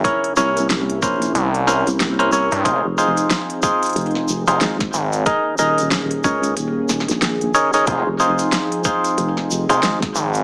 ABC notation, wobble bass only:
X:1
M:4/4
L:1/16
Q:"Swing 16ths" 1/4=92
K:Fm
V:1 name="Wobble bass" clef=bass
z2 C,,4 B,,,2 z3 C,,4 z | z F,,,3 z4 F,,,3 z A,,,2 z2 | z2 E,,,4 D,,2 E,,,3 B,,,3 z2 | z F,,,3 z4 F,,,3 z A,,,2 z2 |]